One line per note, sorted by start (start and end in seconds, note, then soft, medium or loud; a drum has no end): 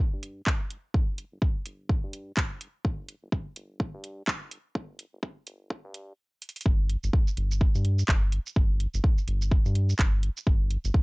0.13 0.42 G2 medium
0.23 closed hi-hat medium
0.47 0.77 G1 medium
0.47 kick loud
0.47 clap loud
0.70 closed hi-hat medium
0.94 1.25 G1 loud
0.94 kick loud
1.18 closed hi-hat medium
1.32 1.39 G1 medium
1.42 kick loud
1.66 1.96 G1 medium
1.66 closed hi-hat medium
1.89 kick loud
2.04 2.32 G2 medium
2.13 closed hi-hat loud
2.37 2.68 G1 medium
2.37 kick loud
2.37 clap loud
2.61 closed hi-hat loud
2.85 3.15 G1 loud
2.85 kick loud
3.09 closed hi-hat medium
3.23 3.29 G1 medium
3.32 kick loud
3.56 3.87 G1 medium
3.56 closed hi-hat medium
3.80 kick loud
3.94 4.23 G2 medium
4.04 closed hi-hat loud
4.27 4.58 G1 medium
4.27 kick loud
4.27 clap loud
4.51 closed hi-hat loud
4.75 5.06 G1 loud
4.75 kick loud
4.99 closed hi-hat loud
5.13 5.20 G1 medium
5.23 kick loud
5.46 5.77 G1 medium
5.46 closed hi-hat medium
5.70 kick loud
5.84 6.13 G2 medium
5.94 closed hi-hat loud
6.42 closed hi-hat medium
6.49 closed hi-hat medium
6.56 closed hi-hat medium
6.61 closed hi-hat medium
6.66 6.96 G1 loud
6.66 kick loud
6.89 closed hi-hat medium
7.04 7.10 G1 medium
7.04 shaker medium
7.13 kick loud
7.27 shaker soft
7.37 7.68 G1 medium
7.37 closed hi-hat medium
7.51 shaker medium
7.61 kick loud
7.75 8.04 G2 medium
7.75 shaker soft
7.85 closed hi-hat medium
7.99 shaker medium
8.08 8.39 G1 medium
8.08 kick loud
8.08 clap loud
8.32 closed hi-hat loud
8.46 shaker medium
8.56 8.87 G1 loud
8.56 kick loud
8.80 closed hi-hat loud
8.94 9.01 G1 medium
8.94 shaker medium
9.04 kick loud
9.18 shaker soft
9.28 9.58 G1 medium
9.28 closed hi-hat medium
9.42 shaker medium
9.51 kick loud
9.66 9.94 G2 medium
9.66 shaker soft
9.75 closed hi-hat loud
9.89 shaker medium
9.99 10.30 G1 medium
9.99 kick loud
9.99 clap loud
10.23 closed hi-hat loud
10.37 shaker medium
10.47 10.77 G1 loud
10.47 kick loud
10.71 closed hi-hat loud
10.85 10.91 G1 medium
10.85 shaker medium
10.94 kick loud